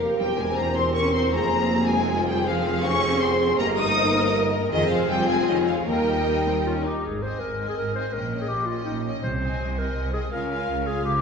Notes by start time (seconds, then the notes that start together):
Already playing: F1 F2 A#3 G4 A#4 C#5
0.17 E1 E2 G3 C4 G4 C5 G5
0.37 G#3 G#5
0.55 A#3 C5 A#5
0.75 C4 C6
0.94 C#4 A#4 C#6
1.14 C4 C6
1.32 F1 F2 A#3 F4 G#4 A#5
1.72 G4
1.88 G#3 G#5
2.08 F4
2.26 G3 G5
2.45 F3 C4 G#4 C5 F5
2.82 C#4 C#6
3.20 C4 C6
3.57 G1 G2 A#3 G4 A#4 D#5 A#5
3.77 D#4 D#6
3.97 C5
4.34 A#4
4.72 F1 F2 D#3 C4 F4 G#4 C5 D#5
4.91 F3 F5
5.09 G3 F4 G5
5.28 G#3 G#5
5.49 D#3 C#5 D#5
5.67 F3 F5
5.87 D#2 G3 A#3 G4 A#4 D#5 G5
6.27 A#3
6.46 C4
6.65 C#4 F4
6.85 D#4 G4
7.04 G#1 G#2 G#4
7.22 C4 C5 D#5 G#5
7.40 G#1 G#2 A#4
7.59 C4 D#5 G#5
7.69 G#4
7.78 G#1 G#2 A#4
7.94 C4 C5 D#5 G#5
8.12 A#1 A#2 C#4 A#4 D#5 G5
8.31 C#4 D#5 G5
8.41 G#4
8.48 A#1 A#2 G4
8.66 C#4 F4 D#5
8.70 G5
8.85 A#1 A#2 D#4
9.06 C#4 D#5 G5
9.22 C2 C3 C5
9.41 C4 D#5 G#5
9.59 C2 C3
9.77 C4 A#4 D#5 G#5
9.95 C2 C3
10.13 C4 G#4 D#5 G#5
10.32 C#2 C#3 F4 A#4 F5 G#5
10.50 F4 F5 G#5
10.68 C#2 C#3
10.86 F4 G#4 F5 G#5
11.03 C#2 C#3 G4